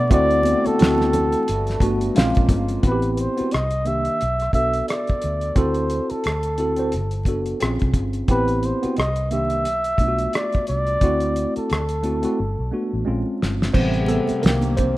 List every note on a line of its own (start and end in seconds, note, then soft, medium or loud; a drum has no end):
0.00 0.77 D3 medium
0.00 0.10 A3 medium
0.00 0.77 A3 medium
0.00 0.12 B3 medium
0.00 0.12 D4 medium
0.00 0.12 F#4 medium
0.00 1.44 F#4 medium
0.00 0.12 D5 loud
0.10 0.54 D2 loud
0.10 0.77 A3 loud
0.10 0.78 C4 loud
0.10 1.46 C4 medium
0.10 0.78 E4 medium
0.10 0.79 F#4 loud
0.10 0.69 D5 loud
0.10 kick loud
0.10 closed hi-hat medium
0.10 muted conga soft
0.30 closed hi-hat soft
0.43 closed hi-hat medium
0.43 muted conga soft
0.43 high conga medium
0.65 2.02 A4 medium
0.65 muted fingered electric bass stroke soft
0.65 closed hi-hat soft
0.65 high conga soft
0.78 1.34 D2 loud
0.78 1.47 E3 medium
0.78 1.43 A3 medium
0.78 1.43 C4 medium
0.78 1.47 D4 medium
0.78 1.44 E4 medium
0.78 1.44 F#4 medium
0.78 closed hi-hat medium
0.78 muted conga soft
0.82 snare loud
0.98 snare soft
0.98 high conga medium
1.13 closed hi-hat medium
1.13 low conga medium
1.32 closed hi-hat soft
1.47 1.75 G1 medium
1.47 2.15 G3 medium
1.47 2.15 A3 medium
1.47 2.15 B3 medium
1.47 2.15 F#4 medium
1.47 closed hi-hat medium
1.47 muted conga soft
1.67 snare soft
1.67 closed hi-hat soft
1.80 2.08 G1 medium
1.80 2.15 A3 medium
1.80 2.15 B3 medium
1.80 2.16 D4 medium
1.80 2.16 F#4 medium
1.80 2.13 A5 medium
1.80 kick medium
1.80 closed hi-hat medium
2.01 closed hi-hat soft
2.15 2.32 A#1 loud
2.15 2.83 C#3 medium
2.15 2.80 G#3 medium
2.15 2.84 G#3 medium
2.15 2.83 A#3 medium
2.15 2.80 C4 medium
2.15 2.80 C#4 medium
2.15 2.84 F4 medium
2.15 2.81 F4 loud
2.15 2.80 F5 medium
2.15 snare loud
2.15 closed hi-hat medium
2.35 2.48 A#1 medium
2.35 kick loud
2.35 closed hi-hat soft
2.49 2.76 G1 medium
2.49 kick loud
2.49 closed hi-hat medium
2.49 high conga medium
2.49 low conga medium
2.68 closed hi-hat soft
2.83 3.26 A1 medium
2.83 3.33 B3 medium
2.83 3.34 C4 medium
2.83 3.34 E4 medium
2.83 2.92 F#4 medium
2.83 3.14 B4 medium
2.83 kick loud
2.83 closed hi-hat medium
2.92 3.37 G4 medium
3.02 closed hi-hat soft
3.14 3.21 B4 medium
3.14 closed hi-hat medium
3.20 3.54 C5 medium
3.37 3.52 B3 medium
3.37 3.52 C4 medium
3.37 3.52 E4 medium
3.37 3.53 F#4 medium
3.37 muted fingered electric bass stroke soft
3.37 closed hi-hat soft
3.51 4.07 C2 medium
3.51 3.89 D#5 medium
3.51 cross-stick medium
3.51 closed hi-hat medium
3.71 closed hi-hat soft
3.85 4.20 D#3 medium
3.85 4.20 A#3 medium
3.85 4.20 D4 medium
3.85 4.21 G4 medium
3.85 4.53 E5 medium
3.85 closed hi-hat soft
4.05 closed hi-hat soft
4.21 4.48 B1 medium
4.21 closed hi-hat medium
4.39 cross-stick soft
4.39 closed hi-hat soft
4.53 4.81 B1 medium
4.53 5.50 B3 medium
4.53 5.51 D4 soft
4.53 5.51 F#4 medium
4.53 5.51 A4 medium
4.53 4.86 E5 medium
4.53 kick medium
4.53 closed hi-hat soft
4.73 closed hi-hat soft
4.88 5.58 D5 medium
4.88 cross-stick medium
4.88 closed hi-hat medium
5.07 kick medium
5.07 closed hi-hat soft
5.22 5.50 D2 medium
5.22 closed hi-hat medium
5.41 closed hi-hat soft
5.55 5.99 D2 medium
5.55 6.24 C4 medium
5.55 6.25 E4 medium
5.55 6.25 F#4 medium
5.55 6.25 A4 medium
5.55 6.12 C5 medium
5.55 kick medium
5.55 closed hi-hat medium
5.74 closed hi-hat soft
5.90 closed hi-hat medium
6.10 7.47 A4 medium
6.10 muted fingered electric bass stroke soft
6.10 closed hi-hat soft
6.24 6.95 D2 medium
6.24 cross-stick medium
6.24 closed hi-hat medium
6.43 closed hi-hat soft
6.58 6.76 C4 medium
6.58 6.77 E4 medium
6.58 6.77 F#4 medium
6.58 6.78 A4 medium
6.58 closed hi-hat medium
6.76 6.92 C4 medium
6.76 6.93 E4 medium
6.76 6.93 F#4 medium
6.76 6.93 C5 medium
6.76 closed hi-hat soft
6.92 7.26 G1 medium
6.92 closed hi-hat medium
7.11 closed hi-hat soft
7.25 7.53 F#1 medium
7.25 7.61 B3 medium
7.25 7.61 D4 medium
7.25 7.61 F#4 medium
7.25 7.62 A4 medium
7.25 kick medium
7.25 closed hi-hat medium
7.46 closed hi-hat soft
7.60 7.77 A#1 medium
7.60 8.25 C4 medium
7.60 8.25 C#4 medium
7.60 8.26 F4 medium
7.60 8.26 G#4 medium
7.60 cross-stick loud
7.60 closed hi-hat medium
7.79 7.93 C2 medium
7.79 kick medium
7.79 closed hi-hat soft
7.94 8.21 G1 medium
7.94 kick medium
7.94 closed hi-hat medium
8.13 closed hi-hat soft
8.28 8.71 A1 medium
8.28 8.79 B3 medium
8.28 8.79 C4 medium
8.28 8.79 E4 medium
8.28 8.80 G4 medium
8.28 8.67 B4 medium
8.28 kick loud
8.28 closed hi-hat medium
8.48 closed hi-hat soft
8.63 8.97 C5 medium
8.63 closed hi-hat medium
8.82 8.97 B3 medium
8.82 8.97 C4 medium
8.82 8.98 E4 medium
8.82 8.98 F#4 medium
8.82 muted fingered electric bass stroke soft
8.82 closed hi-hat soft
8.97 9.66 C2 medium
8.97 9.33 D#5 medium
8.97 cross-stick loud
8.97 closed hi-hat medium
9.16 closed hi-hat soft
9.31 9.66 D#3 medium
9.31 9.65 A#3 medium
9.31 9.66 D4 medium
9.31 9.66 G4 medium
9.31 10.37 E5 medium
9.31 closed hi-hat medium
9.50 closed hi-hat soft
9.65 9.93 B1 medium
9.65 closed hi-hat medium
9.84 closed hi-hat soft
9.98 10.26 B1 medium
9.98 10.96 A3 medium
9.98 10.96 B3 soft
9.98 10.97 D4 medium
9.98 10.08 F4 soft
9.98 kick medium
9.98 closed hi-hat medium
10.08 11.00 F#4 medium
10.19 closed hi-hat soft
10.33 10.68 D5 medium
10.33 cross-stick medium
10.33 closed hi-hat medium
10.52 kick medium
10.52 closed hi-hat soft
10.67 10.96 C2 medium
10.67 11.52 D5 medium
10.67 closed hi-hat medium
10.87 closed hi-hat soft
11.01 11.44 D2 loud
11.01 11.70 A3 medium
11.01 11.70 C4 medium
11.01 11.70 E4 medium
11.01 11.71 F#4 loud
11.01 kick loud
11.01 closed hi-hat medium
11.20 closed hi-hat soft
11.36 closed hi-hat medium
11.56 12.88 A4 medium
11.56 muted fingered electric bass stroke soft
11.56 closed hi-hat soft
11.70 12.24 D2 medium
11.70 cross-stick loud
11.70 closed hi-hat medium
11.89 closed hi-hat soft
12.03 12.21 A3 medium
12.03 12.22 C4 medium
12.03 12.23 E4 medium
12.03 12.23 F#4 medium
12.03 closed hi-hat soft
12.22 12.37 A3 medium
12.22 12.38 C4 medium
12.22 12.38 E4 medium
12.22 12.39 F#4 medium
12.22 closed hi-hat soft
12.40 12.55 G1 medium
12.59 12.70 B1 medium
12.71 13.06 A3 medium
12.71 13.06 B3 medium
12.71 13.07 D4 medium
12.71 13.07 F#4 medium
12.93 13.04 A1 medium
13.05 13.22 A#1 medium
13.05 13.70 G#3 medium
13.05 13.71 C4 medium
13.05 13.71 C#4 medium
13.05 13.71 F4 medium
13.42 13.68 G1 medium
13.42 snare medium
13.62 snare medium
13.73 14.17 A1 loud
13.73 14.39 C3 medium
13.73 14.42 C3 medium
13.73 14.39 G3 medium
13.73 14.42 A3 medium
13.73 14.42 B3 medium
13.73 14.39 B3 medium
13.73 14.01 C4 medium
13.73 14.41 G4 medium
13.73 14.03 C5 loud
13.73 kick loud
13.73 crash medium
13.93 closed hi-hat soft
14.01 14.08 G#4 medium
14.06 14.41 A3 medium
14.06 14.44 A4 medium
14.06 closed hi-hat medium
14.06 high conga medium
14.28 muted fingered electric bass stroke soft
14.28 closed hi-hat soft
14.28 high conga soft
14.42 14.98 C2 loud
14.42 14.90 D#3 medium
14.42 14.98 D#3 medium
14.42 14.98 A#3 medium
14.42 14.75 A#3 medium
14.42 14.98 C4 medium
14.42 14.90 D4 medium
14.42 14.98 G4 medium
14.42 14.77 A#4 medium
14.42 closed hi-hat medium
14.46 snare loud
14.62 closed hi-hat soft
14.62 high conga medium
14.77 14.98 C4 medium
14.77 14.98 C5 medium
14.77 kick medium
14.77 closed hi-hat medium
14.77 low conga medium